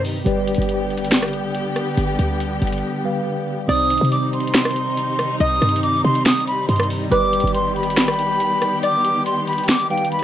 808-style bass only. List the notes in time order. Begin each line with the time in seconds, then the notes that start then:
Already playing: G2
0.26 G1
0.58 G1
1.98 G1
2.19 D2
2.62 G1
3.69 C2
4.01 C3
5.40 C2
5.62 G2
6.05 C3
6.69 G2
7.12 G1
7.44 G1